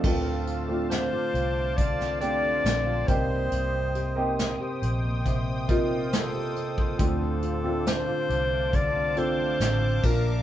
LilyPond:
<<
  \new Staff \with { instrumentName = "Analog synth pad" } { \time 4/4 \key d \phrygian \tempo 4 = 69 << { <f'' a'' d'''>2.~ <f'' a'' d'''>8 <g'' ees'''>8~ | <g'' ees'''>1 | <f'' a'' d'''>1 | } \\ { c''1~ | c''1~ | c''2.~ c''8 d''8 | } >> }
  \new Staff \with { instrumentName = "Alto saxophone" } { \time 4/4 \key d \phrygian a'4 c''4 d''8 d''4 c''8~ | c''4. r4. a'4 | a'4 c''4 d''8 c''4 bes'8 | }
  \new Staff \with { instrumentName = "Grand piano" } { \time 4/4 \key d \phrygian <a c' d' f'>8. <a c' d' f'>4.~ <a c' d' f'>16 <a c' d' g'>4 <bes c' ees' g'>8~ | <bes c' ees' g'>8. <bes c' ees' g'>4.~ <bes c' ees' g'>16 <bes c' ees' f'>4. | <c' d' f' a'>8. <c' d' f' a'>4.~ <c' d' f' a'>16 <c' d' f' a'>4 <bes d' f' bes'>8 | }
  \new Staff \with { instrumentName = "Grand piano" } { \clef bass \time 4/4 \key d \phrygian a,4. r2 g,8~ | g,4 r2. | a,4. r2 r8 | }
  \new Staff \with { instrumentName = "Nylon-string guitar" } { \time 4/4 \key d \phrygian d16 c'16 f'16 a16 c'16 f'16 c'16 a16 d16 c'16 f'16 a16 c'16 f'16 c16 bes16 | c16 c'16 g'16 bes16 c'16 g'16 c'16 bes16 c16 c'16 g'16 bes16 c'16 g'16 c'16 bes16 | d16 c'16 f'16 a16 c'16 f'16 c'16 a16 d16 c'16 f'16 a16 c'16 f'16 bes,8 | }
  \new Staff \with { instrumentName = "Fingered electric bass" } { \clef bass \time 4/4 \key d \phrygian d,4~ d,16 r16 c,4. bes,,8 c,8 | c,4~ c,16 r16 bes,,2~ bes,,8 | d,4~ d,16 r16 c,4. a,,8 bes,,8 | }
  \new DrumStaff \with { instrumentName = "Drums" } \drummode { \time 4/4 <cymc bd>8 hh8 <hh sn>8 hh8 <hh bd>16 sn16 hh8 <hh sn>8 <hh bd>8 | hh8 hh8 <hh sn>8 hh8 <hh bd>8 <hh bd>8 <hh sn>8 hh16 bd16 | <hh bd>8 hh8 <hh sn>8 hh8 <hh bd>8 hh8 <hh sn>8 <cymc bd>8 | }
>>